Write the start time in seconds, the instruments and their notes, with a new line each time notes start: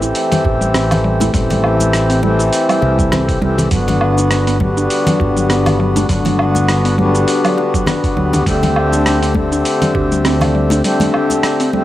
Already playing: fretless electric bass A1, harmonium E3 A3 C4 G4
0.02 synth pluck E4, shaker
0.15 open hi-hat, shaker
0.32 synth pluck G3, open hi-hat, low conga, shaker
0.45 fretless electric bass A1, synth pluck G4, kick, high bongo
0.61 synth pluck G3, shaker
0.74 synth pluck C4, cross-stick, open hi-hat, shaker
0.91 open hi-hat, low conga, low woodblock, shaker
1.04 synth pluck G3
1.20 synth pluck E4, open hi-hat, high bongo, high conga, shaker
1.31 fretless electric bass A1, harmonium E3 A3 C4, synth pluck G3, kick, open hi-hat, shaker
1.35 harmonium G4
1.50 synth pluck G3, open hi-hat, high conga, low conga, shaker
1.64 low woodblock
1.80 high bongo, high conga, shaker
1.93 cross-stick, open hi-hat, shaker
2.10 synth pluck C4, open hi-hat, shaker
2.21 harmonium E3 A3 C4, synth pluck G3, high conga
2.25 harmonium G4
2.39 synth pluck E4, shaker
2.53 open hi-hat, shaker
2.69 synth pluck G3, open hi-hat, low woodblock, shaker
2.82 fretless electric bass C2, synth pluck G4, high bongo
2.99 synth pluck G3, kick, shaker
3.12 synth pluck C4, cross-stick, open hi-hat, low conga, shaker
3.29 kick, open hi-hat, shaker
3.41 fretless electric bass C2, harmonium E3 A3 C4 G4, synth pluck G3, high bongo
3.58 synth pluck E4, open hi-hat, low conga, shaker
3.69 fretless electric bass G1, harmonium D3 B3 F#4, synth pluck F#3, kick, open hi-hat, shaker
3.88 synth pluck F#3, open hi-hat, high conga, low conga, shaker
4.01 low woodblock
4.18 high bongo, shaker
4.31 cross-stick, open hi-hat, shaker
4.47 synth pluck B3, open hi-hat, shaker
4.59 harmonium D3 G3 B3, synth pluck F#3, kick, high conga
4.63 harmonium F#4
4.77 synth pluck D4, shaker
4.90 open hi-hat, shaker
5.07 synth pluck F#3, open hi-hat, low conga, shaker
5.20 fretless electric bass G1, synth pluck F#4, kick, high bongo
5.37 synth pluck F#3, shaker
5.50 synth pluck B3, cross-stick, open hi-hat, shaker
5.66 open hi-hat, low conga, low woodblock, shaker
5.80 synth pluck F#3
5.96 synth pluck D4, open hi-hat, high bongo, high conga, shaker
6.07 fretless electric bass G1, harmonium D3 B3, synth pluck F#3, kick, open hi-hat, shaker
6.11 harmonium F#4
6.25 synth pluck F#3, open hi-hat, high conga, low conga, shaker
6.39 low woodblock
6.55 high bongo, high conga, shaker
6.68 cross-stick, open hi-hat, shaker
6.85 synth pluck B3, open hi-hat, shaker
6.96 harmonium D3 G3 B3 F#4, synth pluck F#3, high conga
7.15 synth pluck D4, shaker
7.28 open hi-hat, shaker
7.44 synth pluck F#3, open hi-hat, low woodblock, shaker
7.57 synth pluck F#4, high bongo
7.74 synth pluck F#3, kick, shaker
7.86 synth pluck B3, cross-stick, open hi-hat, low conga, shaker
8.04 kick, open hi-hat, shaker
8.17 fretless electric bass D2, synth pluck F#3, high bongo
8.33 synth pluck D4, open hi-hat, low conga, shaker
8.45 fretless electric bass D2, harmonium D3 A3 C4 G4, synth pluck G3, kick, open hi-hat, shaker
8.63 synth pluck G3, open hi-hat, high conga, low conga, shaker
8.76 low woodblock
8.93 high bongo, shaker
9.06 cross-stick, open hi-hat, shaker
9.22 synth pluck C4, open hi-hat, shaker
9.33 harmonium D3 A3 C4, synth pluck G3, kick, high conga
9.37 harmonium G4
9.52 synth pluck D4, shaker
9.65 open hi-hat, shaker
9.82 synth pluck G3, open hi-hat, low conga, shaker
9.95 fretless electric bass D2, synth pluck G4, kick, high bongo
10.12 synth pluck G3, shaker
10.25 synth pluck C4, cross-stick, open hi-hat, shaker
10.41 open hi-hat, low conga, low woodblock, shaker
10.55 synth pluck G3
10.70 synth pluck D4, open hi-hat, high bongo, high conga, shaker
10.82 harmonium D3 A3 C4, synth pluck G3, open hi-hat, shaker
10.86 harmonium G4
11.00 synth pluck G3, open hi-hat, high conga, low conga, shaker
11.14 low woodblock
11.30 high bongo, high conga, shaker
11.43 cross-stick, open hi-hat, shaker
11.60 synth pluck C4, open hi-hat, shaker
11.71 harmonium D3 A3 C4, synth pluck G3, high conga
11.75 harmonium G4